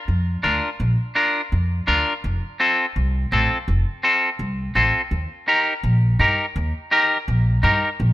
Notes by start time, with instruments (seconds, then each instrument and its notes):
0.08 upright bass F2
0.43 upright bass D2, clean electric guitar D4 F4 A#4
0.80 upright bass A#1
1.15 clean electric guitar D4 F4 A#4
1.52 upright bass F2
1.87 upright bass D2, clean electric guitar D4 F4 A#4
2.24 upright bass F1
2.60 clean electric guitar C4 F4 A4
2.96 upright bass C2
3.32 upright bass A1, clean electric guitar C4 F4 A4
3.68 upright bass F1
4.03 clean electric guitar C4 F4 A4
4.39 upright bass C2
4.75 upright bass A1, clean electric guitar C4 F4 A4
5.11 upright bass D#2
5.48 clean electric guitar D#4 G4 A#4
5.83 upright bass A#1
6.19 upright bass G2, clean electric guitar D#4 G4 A#4
6.56 upright bass D#2
6.91 clean electric guitar D#4 G4 A#4
7.28 upright bass A#1
7.63 upright bass G2, clean electric guitar D#4 G4 A#4
8.00 upright bass A#1